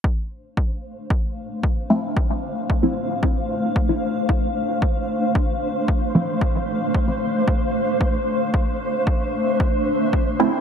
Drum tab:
BD |o-o-o-o-|o-o-o-o-|o-o-o-o-|o-o-o-o-|

BD |o-o-o-o-|